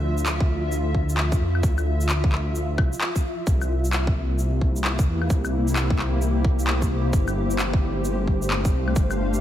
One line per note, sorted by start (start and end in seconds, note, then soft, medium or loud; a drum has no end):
0.00 0.48 D2 medium
0.00 3.47 F4 medium
0.00 7.13 E5 medium
0.18 shaker medium
0.26 clap loud
0.26 shaker medium
0.40 kick loud
0.49 0.94 D2 medium
0.72 shaker medium
0.94 1.39 D2 medium
0.94 kick medium
1.09 shaker medium
1.17 clap loud
1.32 kick loud
1.32 shaker medium
1.40 1.62 F2 medium
1.55 claves soft
1.63 2.31 D2 medium
1.63 kick loud
1.63 shaker medium
1.78 claves soft
1.78 shaker soft
2.01 shaker medium
2.09 clap loud
2.09 shaker medium
2.24 kick loud
2.32 2.55 D2 medium
2.32 clap medium
2.55 2.80 D2 loud
2.55 shaker medium
2.78 2.92 C2 loud
2.78 kick loud
2.78 claves medium
2.93 shaker medium
3.01 clap loud
3.16 kick medium
3.16 shaker medium
3.47 4.15 C2 medium
3.47 7.14 A#3 medium
3.47 kick loud
3.47 shaker medium
3.62 7.13 E4 medium
3.62 claves soft
3.62 shaker soft
3.78 9.41 G4 medium
3.85 shaker medium
3.93 clap loud
3.93 shaker medium
4.00 9.41 C5 medium
4.07 kick loud
4.16 4.60 C2 medium
4.39 shaker medium
4.61 5.06 C2 medium
4.61 kick medium
4.76 shaker medium
4.84 clap loud
4.99 kick loud
4.99 shaker medium
5.07 5.29 E2 medium
5.22 claves soft
5.30 5.98 C2 loud
5.30 kick loud
5.30 shaker medium
5.45 claves soft
5.45 shaker soft
5.68 shaker medium
5.76 clap loud
5.76 shaker medium
5.90 kick loud
5.99 6.44 C2 medium
5.99 clap medium
6.22 shaker medium
6.44 7.12 C2 loud
6.44 kick loud
6.59 shaker soft
6.67 clap loud
6.82 kick medium
6.82 shaker soft
7.13 7.81 G1 loud
7.13 9.41 A3 medium
7.13 kick loud
7.13 shaker medium
7.28 claves soft
7.28 shaker soft
7.33 9.41 D4 medium
7.50 shaker medium
7.57 9.41 F5 medium
7.57 clap loud
7.57 shaker medium
7.73 kick loud
7.82 8.27 G1 medium
8.05 shaker medium
8.27 8.72 G1 medium
8.27 kick medium
8.42 shaker medium
8.50 clap loud
8.65 kick loud
8.65 shaker medium
8.73 8.95 C2 medium
8.88 claves soft
8.96 9.41 G1 medium
8.96 kick loud
8.96 shaker medium
9.11 claves soft
9.11 shaker soft
9.34 shaker medium